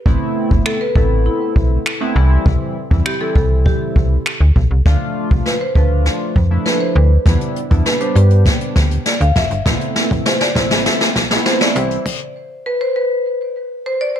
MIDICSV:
0, 0, Header, 1, 5, 480
1, 0, Start_track
1, 0, Tempo, 600000
1, 46, Time_signature, 4, 2, 24, 8
1, 11359, End_track
2, 0, Start_track
2, 0, Title_t, "Marimba"
2, 0, Program_c, 0, 12
2, 527, Note_on_c, 0, 69, 96
2, 638, Note_off_c, 0, 69, 0
2, 648, Note_on_c, 0, 71, 97
2, 767, Note_on_c, 0, 69, 97
2, 771, Note_off_c, 0, 71, 0
2, 875, Note_off_c, 0, 69, 0
2, 1008, Note_on_c, 0, 64, 81
2, 1695, Note_off_c, 0, 64, 0
2, 2446, Note_on_c, 0, 67, 92
2, 2566, Note_on_c, 0, 69, 95
2, 2570, Note_off_c, 0, 67, 0
2, 2678, Note_off_c, 0, 69, 0
2, 2688, Note_on_c, 0, 69, 98
2, 2926, Note_on_c, 0, 67, 86
2, 2934, Note_off_c, 0, 69, 0
2, 3614, Note_off_c, 0, 67, 0
2, 4366, Note_on_c, 0, 71, 90
2, 4478, Note_off_c, 0, 71, 0
2, 4489, Note_on_c, 0, 72, 95
2, 4609, Note_on_c, 0, 71, 86
2, 4611, Note_off_c, 0, 72, 0
2, 4717, Note_off_c, 0, 71, 0
2, 5325, Note_on_c, 0, 71, 90
2, 5443, Note_on_c, 0, 72, 94
2, 5449, Note_off_c, 0, 71, 0
2, 5498, Note_off_c, 0, 72, 0
2, 5563, Note_on_c, 0, 71, 85
2, 5788, Note_off_c, 0, 71, 0
2, 6287, Note_on_c, 0, 71, 95
2, 6398, Note_off_c, 0, 71, 0
2, 6407, Note_on_c, 0, 72, 95
2, 6524, Note_on_c, 0, 71, 86
2, 6530, Note_off_c, 0, 72, 0
2, 6748, Note_off_c, 0, 71, 0
2, 7249, Note_on_c, 0, 74, 86
2, 7359, Note_off_c, 0, 74, 0
2, 7367, Note_on_c, 0, 77, 106
2, 7488, Note_on_c, 0, 76, 92
2, 7490, Note_off_c, 0, 77, 0
2, 7710, Note_off_c, 0, 76, 0
2, 8206, Note_on_c, 0, 72, 96
2, 8260, Note_off_c, 0, 72, 0
2, 8326, Note_on_c, 0, 74, 100
2, 8446, Note_on_c, 0, 72, 82
2, 8450, Note_off_c, 0, 74, 0
2, 8554, Note_off_c, 0, 72, 0
2, 9168, Note_on_c, 0, 72, 98
2, 9289, Note_on_c, 0, 74, 102
2, 9291, Note_off_c, 0, 72, 0
2, 9342, Note_off_c, 0, 74, 0
2, 9407, Note_on_c, 0, 72, 85
2, 9515, Note_off_c, 0, 72, 0
2, 10129, Note_on_c, 0, 71, 98
2, 10248, Note_on_c, 0, 72, 100
2, 10251, Note_off_c, 0, 71, 0
2, 10368, Note_on_c, 0, 71, 90
2, 10371, Note_off_c, 0, 72, 0
2, 10591, Note_off_c, 0, 71, 0
2, 11090, Note_on_c, 0, 72, 100
2, 11208, Note_on_c, 0, 74, 103
2, 11212, Note_off_c, 0, 72, 0
2, 11262, Note_off_c, 0, 74, 0
2, 11327, Note_on_c, 0, 72, 89
2, 11359, Note_off_c, 0, 72, 0
2, 11359, End_track
3, 0, Start_track
3, 0, Title_t, "Analog polysynth"
3, 0, Program_c, 1, 90
3, 45, Note_on_c, 1, 57, 95
3, 47, Note_on_c, 1, 59, 79
3, 48, Note_on_c, 1, 60, 83
3, 50, Note_on_c, 1, 64, 100
3, 616, Note_off_c, 1, 57, 0
3, 616, Note_off_c, 1, 59, 0
3, 617, Note_off_c, 1, 60, 0
3, 618, Note_off_c, 1, 64, 0
3, 766, Note_on_c, 1, 57, 75
3, 767, Note_on_c, 1, 59, 69
3, 769, Note_on_c, 1, 60, 72
3, 770, Note_on_c, 1, 64, 84
3, 1431, Note_off_c, 1, 57, 0
3, 1432, Note_off_c, 1, 59, 0
3, 1432, Note_off_c, 1, 60, 0
3, 1433, Note_off_c, 1, 64, 0
3, 1605, Note_on_c, 1, 57, 86
3, 1606, Note_on_c, 1, 59, 82
3, 1608, Note_on_c, 1, 60, 82
3, 1609, Note_on_c, 1, 64, 100
3, 1717, Note_off_c, 1, 57, 0
3, 1718, Note_off_c, 1, 59, 0
3, 1718, Note_off_c, 1, 60, 0
3, 1719, Note_off_c, 1, 64, 0
3, 1725, Note_on_c, 1, 52, 96
3, 1726, Note_on_c, 1, 55, 86
3, 1728, Note_on_c, 1, 60, 84
3, 1729, Note_on_c, 1, 64, 106
3, 2206, Note_off_c, 1, 52, 0
3, 2206, Note_off_c, 1, 55, 0
3, 2207, Note_off_c, 1, 60, 0
3, 2208, Note_off_c, 1, 64, 0
3, 2324, Note_on_c, 1, 52, 74
3, 2326, Note_on_c, 1, 55, 71
3, 2327, Note_on_c, 1, 60, 69
3, 2329, Note_on_c, 1, 64, 83
3, 2515, Note_off_c, 1, 52, 0
3, 2516, Note_off_c, 1, 55, 0
3, 2516, Note_off_c, 1, 60, 0
3, 2518, Note_off_c, 1, 64, 0
3, 2564, Note_on_c, 1, 52, 76
3, 2566, Note_on_c, 1, 55, 68
3, 2567, Note_on_c, 1, 60, 67
3, 2568, Note_on_c, 1, 64, 82
3, 3325, Note_off_c, 1, 52, 0
3, 3326, Note_off_c, 1, 55, 0
3, 3327, Note_off_c, 1, 60, 0
3, 3327, Note_off_c, 1, 64, 0
3, 3884, Note_on_c, 1, 53, 89
3, 3886, Note_on_c, 1, 57, 80
3, 3887, Note_on_c, 1, 62, 83
3, 3888, Note_on_c, 1, 65, 103
3, 4455, Note_off_c, 1, 53, 0
3, 4456, Note_off_c, 1, 57, 0
3, 4456, Note_off_c, 1, 62, 0
3, 4457, Note_off_c, 1, 65, 0
3, 4605, Note_on_c, 1, 53, 73
3, 4606, Note_on_c, 1, 57, 66
3, 4608, Note_on_c, 1, 62, 71
3, 4609, Note_on_c, 1, 65, 82
3, 5081, Note_off_c, 1, 53, 0
3, 5081, Note_off_c, 1, 57, 0
3, 5082, Note_off_c, 1, 62, 0
3, 5083, Note_off_c, 1, 65, 0
3, 5204, Note_on_c, 1, 53, 73
3, 5206, Note_on_c, 1, 57, 71
3, 5207, Note_on_c, 1, 62, 69
3, 5208, Note_on_c, 1, 64, 81
3, 5680, Note_off_c, 1, 53, 0
3, 5681, Note_off_c, 1, 57, 0
3, 5682, Note_off_c, 1, 62, 0
3, 5682, Note_off_c, 1, 64, 0
3, 5804, Note_on_c, 1, 55, 75
3, 5805, Note_on_c, 1, 59, 73
3, 5806, Note_on_c, 1, 62, 72
3, 5808, Note_on_c, 1, 64, 85
3, 6090, Note_off_c, 1, 55, 0
3, 6091, Note_off_c, 1, 59, 0
3, 6091, Note_off_c, 1, 62, 0
3, 6092, Note_off_c, 1, 64, 0
3, 6164, Note_on_c, 1, 55, 75
3, 6165, Note_on_c, 1, 59, 69
3, 6166, Note_on_c, 1, 62, 72
3, 6168, Note_on_c, 1, 64, 84
3, 6355, Note_off_c, 1, 55, 0
3, 6356, Note_off_c, 1, 59, 0
3, 6356, Note_off_c, 1, 62, 0
3, 6357, Note_off_c, 1, 64, 0
3, 6404, Note_on_c, 1, 55, 73
3, 6405, Note_on_c, 1, 59, 68
3, 6407, Note_on_c, 1, 62, 69
3, 6408, Note_on_c, 1, 67, 80
3, 7165, Note_off_c, 1, 55, 0
3, 7166, Note_off_c, 1, 59, 0
3, 7166, Note_off_c, 1, 62, 0
3, 7167, Note_off_c, 1, 67, 0
3, 7725, Note_on_c, 1, 57, 76
3, 7726, Note_on_c, 1, 59, 69
3, 7727, Note_on_c, 1, 60, 72
3, 7729, Note_on_c, 1, 64, 84
3, 8296, Note_off_c, 1, 57, 0
3, 8296, Note_off_c, 1, 59, 0
3, 8297, Note_off_c, 1, 60, 0
3, 8298, Note_off_c, 1, 64, 0
3, 8444, Note_on_c, 1, 57, 77
3, 8447, Note_on_c, 1, 60, 71
3, 8449, Note_on_c, 1, 64, 86
3, 8920, Note_off_c, 1, 57, 0
3, 8922, Note_off_c, 1, 60, 0
3, 8922, Note_off_c, 1, 64, 0
3, 9045, Note_on_c, 1, 57, 79
3, 9046, Note_on_c, 1, 59, 74
3, 9047, Note_on_c, 1, 60, 68
3, 9049, Note_on_c, 1, 64, 89
3, 9398, Note_off_c, 1, 60, 0
3, 9400, Note_off_c, 1, 64, 0
3, 9405, Note_on_c, 1, 52, 82
3, 9406, Note_off_c, 1, 57, 0
3, 9406, Note_off_c, 1, 59, 0
3, 9406, Note_on_c, 1, 55, 75
3, 9408, Note_on_c, 1, 60, 75
3, 9409, Note_on_c, 1, 64, 87
3, 9598, Note_off_c, 1, 52, 0
3, 9598, Note_off_c, 1, 55, 0
3, 9599, Note_off_c, 1, 60, 0
3, 9600, Note_off_c, 1, 64, 0
3, 11359, End_track
4, 0, Start_track
4, 0, Title_t, "FM bass"
4, 0, Program_c, 2, 39
4, 46, Note_on_c, 2, 33, 98
4, 136, Note_off_c, 2, 33, 0
4, 409, Note_on_c, 2, 31, 85
4, 497, Note_off_c, 2, 31, 0
4, 764, Note_on_c, 2, 33, 88
4, 1033, Note_off_c, 2, 33, 0
4, 1247, Note_on_c, 2, 35, 82
4, 1425, Note_off_c, 2, 35, 0
4, 1726, Note_on_c, 2, 36, 100
4, 1905, Note_off_c, 2, 36, 0
4, 1967, Note_on_c, 2, 36, 100
4, 2056, Note_off_c, 2, 36, 0
4, 2329, Note_on_c, 2, 40, 85
4, 2417, Note_off_c, 2, 40, 0
4, 2684, Note_on_c, 2, 36, 94
4, 2953, Note_off_c, 2, 36, 0
4, 3168, Note_on_c, 2, 36, 83
4, 3346, Note_off_c, 2, 36, 0
4, 3525, Note_on_c, 2, 38, 81
4, 3615, Note_off_c, 2, 38, 0
4, 3647, Note_on_c, 2, 35, 97
4, 3736, Note_off_c, 2, 35, 0
4, 3766, Note_on_c, 2, 36, 82
4, 3856, Note_off_c, 2, 36, 0
4, 3886, Note_on_c, 2, 38, 102
4, 3975, Note_off_c, 2, 38, 0
4, 4248, Note_on_c, 2, 36, 88
4, 4337, Note_off_c, 2, 36, 0
4, 4603, Note_on_c, 2, 38, 88
4, 4872, Note_off_c, 2, 38, 0
4, 5087, Note_on_c, 2, 41, 89
4, 5265, Note_off_c, 2, 41, 0
4, 5565, Note_on_c, 2, 38, 99
4, 5744, Note_off_c, 2, 38, 0
4, 5805, Note_on_c, 2, 40, 108
4, 5895, Note_off_c, 2, 40, 0
4, 6168, Note_on_c, 2, 40, 89
4, 6257, Note_off_c, 2, 40, 0
4, 6525, Note_on_c, 2, 43, 86
4, 6793, Note_off_c, 2, 43, 0
4, 7007, Note_on_c, 2, 38, 90
4, 7185, Note_off_c, 2, 38, 0
4, 7366, Note_on_c, 2, 38, 88
4, 7455, Note_off_c, 2, 38, 0
4, 7487, Note_on_c, 2, 29, 101
4, 7576, Note_off_c, 2, 29, 0
4, 7605, Note_on_c, 2, 31, 92
4, 7695, Note_off_c, 2, 31, 0
4, 7726, Note_on_c, 2, 33, 104
4, 7815, Note_off_c, 2, 33, 0
4, 8089, Note_on_c, 2, 31, 90
4, 8177, Note_off_c, 2, 31, 0
4, 8444, Note_on_c, 2, 33, 89
4, 8713, Note_off_c, 2, 33, 0
4, 8926, Note_on_c, 2, 35, 85
4, 9105, Note_off_c, 2, 35, 0
4, 9406, Note_on_c, 2, 36, 101
4, 9585, Note_off_c, 2, 36, 0
4, 11359, End_track
5, 0, Start_track
5, 0, Title_t, "Drums"
5, 46, Note_on_c, 9, 36, 112
5, 126, Note_off_c, 9, 36, 0
5, 409, Note_on_c, 9, 36, 85
5, 489, Note_off_c, 9, 36, 0
5, 526, Note_on_c, 9, 26, 101
5, 606, Note_off_c, 9, 26, 0
5, 764, Note_on_c, 9, 36, 96
5, 844, Note_off_c, 9, 36, 0
5, 1247, Note_on_c, 9, 36, 84
5, 1327, Note_off_c, 9, 36, 0
5, 1488, Note_on_c, 9, 26, 100
5, 1568, Note_off_c, 9, 26, 0
5, 1967, Note_on_c, 9, 36, 113
5, 2047, Note_off_c, 9, 36, 0
5, 2329, Note_on_c, 9, 36, 87
5, 2409, Note_off_c, 9, 36, 0
5, 2446, Note_on_c, 9, 26, 103
5, 2526, Note_off_c, 9, 26, 0
5, 2684, Note_on_c, 9, 36, 93
5, 2764, Note_off_c, 9, 36, 0
5, 2927, Note_on_c, 9, 36, 102
5, 3007, Note_off_c, 9, 36, 0
5, 3167, Note_on_c, 9, 36, 83
5, 3247, Note_off_c, 9, 36, 0
5, 3408, Note_on_c, 9, 26, 100
5, 3488, Note_off_c, 9, 26, 0
5, 3647, Note_on_c, 9, 36, 88
5, 3727, Note_off_c, 9, 36, 0
5, 3886, Note_on_c, 9, 36, 110
5, 3886, Note_on_c, 9, 38, 52
5, 3966, Note_off_c, 9, 36, 0
5, 3966, Note_off_c, 9, 38, 0
5, 4248, Note_on_c, 9, 36, 86
5, 4328, Note_off_c, 9, 36, 0
5, 4366, Note_on_c, 9, 38, 54
5, 4446, Note_off_c, 9, 38, 0
5, 4603, Note_on_c, 9, 36, 95
5, 4683, Note_off_c, 9, 36, 0
5, 4846, Note_on_c, 9, 38, 62
5, 4926, Note_off_c, 9, 38, 0
5, 5087, Note_on_c, 9, 36, 83
5, 5167, Note_off_c, 9, 36, 0
5, 5326, Note_on_c, 9, 38, 66
5, 5406, Note_off_c, 9, 38, 0
5, 5806, Note_on_c, 9, 36, 117
5, 5806, Note_on_c, 9, 38, 75
5, 5806, Note_on_c, 9, 42, 88
5, 5886, Note_off_c, 9, 36, 0
5, 5886, Note_off_c, 9, 38, 0
5, 5886, Note_off_c, 9, 42, 0
5, 5927, Note_on_c, 9, 42, 49
5, 6007, Note_off_c, 9, 42, 0
5, 6048, Note_on_c, 9, 42, 62
5, 6128, Note_off_c, 9, 42, 0
5, 6167, Note_on_c, 9, 42, 57
5, 6168, Note_on_c, 9, 36, 90
5, 6247, Note_off_c, 9, 42, 0
5, 6248, Note_off_c, 9, 36, 0
5, 6286, Note_on_c, 9, 38, 76
5, 6286, Note_on_c, 9, 42, 92
5, 6366, Note_off_c, 9, 38, 0
5, 6366, Note_off_c, 9, 42, 0
5, 6404, Note_on_c, 9, 42, 57
5, 6484, Note_off_c, 9, 42, 0
5, 6528, Note_on_c, 9, 42, 72
5, 6608, Note_off_c, 9, 42, 0
5, 6645, Note_on_c, 9, 42, 53
5, 6725, Note_off_c, 9, 42, 0
5, 6766, Note_on_c, 9, 36, 106
5, 6766, Note_on_c, 9, 38, 81
5, 6766, Note_on_c, 9, 42, 98
5, 6846, Note_off_c, 9, 36, 0
5, 6846, Note_off_c, 9, 38, 0
5, 6846, Note_off_c, 9, 42, 0
5, 6886, Note_on_c, 9, 42, 53
5, 6966, Note_off_c, 9, 42, 0
5, 7006, Note_on_c, 9, 38, 87
5, 7007, Note_on_c, 9, 36, 86
5, 7008, Note_on_c, 9, 42, 73
5, 7086, Note_off_c, 9, 38, 0
5, 7087, Note_off_c, 9, 36, 0
5, 7088, Note_off_c, 9, 42, 0
5, 7128, Note_on_c, 9, 42, 54
5, 7208, Note_off_c, 9, 42, 0
5, 7246, Note_on_c, 9, 38, 92
5, 7246, Note_on_c, 9, 42, 93
5, 7326, Note_off_c, 9, 38, 0
5, 7326, Note_off_c, 9, 42, 0
5, 7366, Note_on_c, 9, 42, 45
5, 7446, Note_off_c, 9, 42, 0
5, 7485, Note_on_c, 9, 42, 74
5, 7486, Note_on_c, 9, 38, 89
5, 7487, Note_on_c, 9, 36, 90
5, 7565, Note_off_c, 9, 42, 0
5, 7566, Note_off_c, 9, 38, 0
5, 7567, Note_off_c, 9, 36, 0
5, 7606, Note_on_c, 9, 42, 48
5, 7686, Note_off_c, 9, 42, 0
5, 7726, Note_on_c, 9, 36, 117
5, 7726, Note_on_c, 9, 38, 101
5, 7727, Note_on_c, 9, 42, 91
5, 7806, Note_off_c, 9, 36, 0
5, 7806, Note_off_c, 9, 38, 0
5, 7807, Note_off_c, 9, 42, 0
5, 7848, Note_on_c, 9, 42, 51
5, 7928, Note_off_c, 9, 42, 0
5, 7966, Note_on_c, 9, 38, 93
5, 7968, Note_on_c, 9, 42, 62
5, 8046, Note_off_c, 9, 38, 0
5, 8048, Note_off_c, 9, 42, 0
5, 8087, Note_on_c, 9, 42, 58
5, 8089, Note_on_c, 9, 36, 94
5, 8167, Note_off_c, 9, 42, 0
5, 8169, Note_off_c, 9, 36, 0
5, 8206, Note_on_c, 9, 38, 99
5, 8206, Note_on_c, 9, 42, 94
5, 8286, Note_off_c, 9, 38, 0
5, 8286, Note_off_c, 9, 42, 0
5, 8324, Note_on_c, 9, 42, 53
5, 8326, Note_on_c, 9, 38, 100
5, 8404, Note_off_c, 9, 42, 0
5, 8406, Note_off_c, 9, 38, 0
5, 8444, Note_on_c, 9, 36, 97
5, 8446, Note_on_c, 9, 38, 101
5, 8448, Note_on_c, 9, 42, 68
5, 8524, Note_off_c, 9, 36, 0
5, 8526, Note_off_c, 9, 38, 0
5, 8528, Note_off_c, 9, 42, 0
5, 8565, Note_on_c, 9, 42, 52
5, 8566, Note_on_c, 9, 38, 101
5, 8645, Note_off_c, 9, 42, 0
5, 8646, Note_off_c, 9, 38, 0
5, 8686, Note_on_c, 9, 38, 110
5, 8686, Note_on_c, 9, 42, 95
5, 8766, Note_off_c, 9, 38, 0
5, 8766, Note_off_c, 9, 42, 0
5, 8806, Note_on_c, 9, 38, 101
5, 8806, Note_on_c, 9, 42, 54
5, 8886, Note_off_c, 9, 38, 0
5, 8886, Note_off_c, 9, 42, 0
5, 8925, Note_on_c, 9, 38, 108
5, 8927, Note_on_c, 9, 36, 85
5, 8927, Note_on_c, 9, 42, 76
5, 9005, Note_off_c, 9, 38, 0
5, 9007, Note_off_c, 9, 36, 0
5, 9007, Note_off_c, 9, 42, 0
5, 9046, Note_on_c, 9, 38, 113
5, 9048, Note_on_c, 9, 42, 57
5, 9126, Note_off_c, 9, 38, 0
5, 9128, Note_off_c, 9, 42, 0
5, 9166, Note_on_c, 9, 38, 112
5, 9166, Note_on_c, 9, 42, 93
5, 9246, Note_off_c, 9, 38, 0
5, 9246, Note_off_c, 9, 42, 0
5, 9285, Note_on_c, 9, 42, 47
5, 9286, Note_on_c, 9, 38, 114
5, 9365, Note_off_c, 9, 42, 0
5, 9366, Note_off_c, 9, 38, 0
5, 9404, Note_on_c, 9, 42, 76
5, 9484, Note_off_c, 9, 42, 0
5, 9526, Note_on_c, 9, 42, 50
5, 9606, Note_off_c, 9, 42, 0
5, 9646, Note_on_c, 9, 36, 116
5, 9646, Note_on_c, 9, 49, 92
5, 9726, Note_off_c, 9, 36, 0
5, 9726, Note_off_c, 9, 49, 0
5, 11359, End_track
0, 0, End_of_file